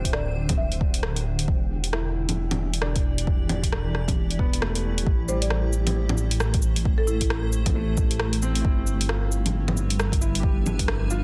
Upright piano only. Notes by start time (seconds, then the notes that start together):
Already playing: C4
1.93 E4
2.82 D4
4.39 B3
4.62 A3
5.28 G3
7.75 A3
8.42 C4
8.61 E4
9.10 F4
10.21 E4
10.40 G4
11.11 F4